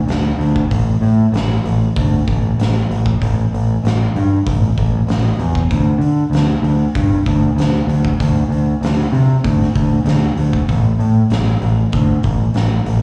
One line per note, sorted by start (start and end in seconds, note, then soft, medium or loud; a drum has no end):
0.06 0.31 D2 medium
0.06 snare loud
0.06 open hi-hat medium
0.38 0.62 D2 medium
0.38 open hi-hat soft
0.56 kick medium
0.71 0.95 A1 medium
0.71 kick medium
0.71 open hi-hat medium
1.01 1.25 A2 medium
1.01 open hi-hat soft
1.32 1.56 A1 medium
1.32 snare loud
1.32 open hi-hat medium
1.64 1.88 A1 medium
1.64 open hi-hat soft
1.96 2.20 D2 medium
1.96 kick loud
1.96 open hi-hat medium
2.28 2.51 A1 medium
2.28 kick medium
2.28 open hi-hat soft
2.58 2.81 A1 medium
2.58 snare loud
2.58 open hi-hat medium
2.89 3.13 A1 medium
2.89 open hi-hat medium
3.06 kick medium
3.22 3.45 A1 medium
3.22 kick medium
3.22 open hi-hat medium
3.53 3.76 A1 medium
3.53 open hi-hat soft
3.84 4.07 A1 medium
3.84 snare medium
3.84 open hi-hat medium
4.16 4.38 G2 medium
4.16 open hi-hat soft
4.46 4.69 A1 medium
4.46 kick loud
4.46 open hi-hat medium
4.78 5.00 A1 medium
4.78 kick medium
4.78 open hi-hat soft
5.07 5.30 A1 medium
5.07 snare loud
5.07 open hi-hat medium
5.39 5.62 E2 medium
5.39 open hi-hat soft
5.55 kick loud
5.71 5.94 D2 medium
5.71 kick medium
5.71 open hi-hat medium
5.98 6.22 D3 medium
5.98 open hi-hat soft
6.30 6.54 D2 medium
6.30 open hi-hat medium
6.35 snare loud
6.62 6.86 D2 medium
6.62 open hi-hat soft
6.95 7.18 G2 medium
6.95 kick loud
6.95 open hi-hat medium
7.26 7.49 D2 medium
7.26 kick medium
7.26 open hi-hat medium
7.55 7.79 D2 medium
7.55 open hi-hat medium
7.60 snare medium
7.87 8.10 D2 medium
7.87 open hi-hat medium
8.05 kick medium
8.20 8.43 D2 medium
8.20 kick medium
8.20 open hi-hat medium
8.49 8.73 D2 medium
8.49 open hi-hat soft
8.81 9.04 D2 medium
8.81 snare loud
8.81 open hi-hat medium
9.12 9.35 C3 medium
9.12 open hi-hat medium
9.44 9.67 D2 medium
9.44 kick loud
9.44 open hi-hat medium
9.62 snare soft
9.75 9.98 D2 medium
9.75 kick medium
9.75 open hi-hat medium
10.04 10.28 D2 medium
10.04 snare medium
10.04 open hi-hat medium
10.37 10.60 D2 medium
10.37 open hi-hat medium
10.53 kick medium
10.69 10.92 A1 medium
10.69 kick medium
10.69 open hi-hat medium
10.99 11.22 A2 medium
10.99 open hi-hat soft
11.30 11.53 A1 medium
11.30 snare loud
11.30 open hi-hat medium
11.62 11.85 A1 medium
11.62 open hi-hat soft
11.92 12.16 D2 medium
11.92 kick loud
11.92 open hi-hat medium
12.23 12.47 A1 medium
12.23 kick medium
12.23 open hi-hat soft
12.54 12.78 A1 medium
12.54 snare loud
12.54 open hi-hat medium
12.85 13.02 A1 medium
12.85 open hi-hat medium